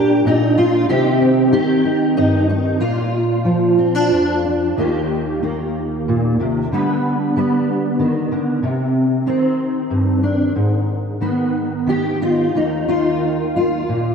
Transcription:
Already playing: A#2 D4 G4 A#4
0.25 A#2 D#4
0.58 F4
0.89 C3 D#3 C4 D#4 G4
1.21 D#4
1.52 D#3 G4
1.85 D#4
2.16 G2 D#4
2.49 D#4
2.80 A#2 F4
3.44 F3
3.78 C4
3.95 D4
4.11 F2
4.44 D4
4.77 D#2 D#3 A#3 F4 G4
5.42 D#3 A#3
6.08 A#2
6.40 C3
6.72 D3 G3 B3 B4
7.36 G3 B3
7.99 D#3
8.32 D3
8.63 C3
9.26 D#3 C4
9.90 G2
10.23 D4
10.55 G#2
11.21 D#3 B3
11.87 D#3 G4
12.21 D#4 F4
12.54 D#2 D#3 A#3 D#4
12.88 D#3 F4
13.56 F4
13.89 A#2

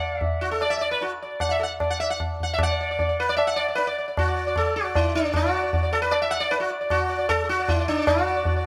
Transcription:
Already playing: F#5
0.00 D5
0.21 E5, tabla tin, tabla ge
0.41 F#4
0.51 A4
0.61 D5, tabla na
0.70 E5
0.77 D5 E5
0.91 B4
1.01 F#4, tabla tin
1.22 D5
1.40 F#5, tabla na, tabla ge
1.49 E5 F#5
1.59 A4 F#5
1.80 D5, tabla na, tabla ge
1.90 F#5
2.00 E5, tabla te
2.10 F#5
2.20 tabla na, tabla ge
2.40 F#5, tabla ge
2.54 E5
2.59 D5, tabla na, tabla ge
2.63 F#5
2.71 D5
2.81 D5
2.91 D5
2.99 D5, tabla tin, tabla ge
3.09 D5
3.20 B4
3.29 D5
3.37 E5, tabla na
3.47 F#5
3.56 D5, tabla na
3.68 D5
3.75 B4, tabla tin
3.87 D5
3.98 D5
4.08 D5
4.17 F#4, tabla na, tabla ge
4.28 D5
4.36 D5
4.47 D5
4.56 A4, tabla na, tabla ge
4.66 D5
4.76 F#4, tabla te
4.85 D5
4.95 E4, tabla na, tabla ge
5.05 D5
5.15 D4, tabla te
5.25 D5
5.34 F#4, tabla na, tabla ge
5.44 D5
5.54 D5
5.63 D5
5.73 D5, tabla tin, tabla ge
5.83 D5
5.93 A4, tabla na
6.02 B4
6.11 D5, tabla na
6.22 E5
6.31 F#5
6.40 D5
6.51 B4, tabla tin
6.60 F#4
6.70 D5
6.81 D5
6.90 F#4, tabla na, tabla ge
7.09 D5
7.19 D5
7.29 A4, tabla na, tabla ge
7.44 A4
7.49 F#4, tabla te
7.59 D5
7.68 E4, tabla na, tabla ge
7.79 D5
7.88 D4, tabla ge
7.99 D5
8.07 F#4, tabla na, tabla ge
8.18 D5
8.26 D5
8.36 D5
8.45 D5, tabla tin, tabla ge
8.56 D5

